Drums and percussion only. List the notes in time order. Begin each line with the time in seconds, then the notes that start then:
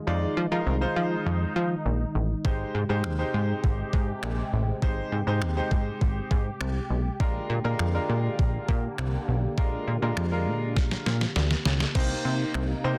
2.45 kick
3.04 finger snap
3.64 kick
3.93 kick
4.23 finger snap
4.82 kick
5.42 finger snap
5.71 kick
6.01 kick
6.31 kick
6.61 finger snap
7.20 kick
7.79 finger snap
8.39 kick
8.69 kick
8.98 finger snap
9.58 kick
10.17 finger snap
10.77 kick, snare
10.91 snare
11.06 snare
11.21 snare
11.36 snare
11.51 snare
11.65 snare
11.80 snare
11.95 kick, crash
12.54 finger snap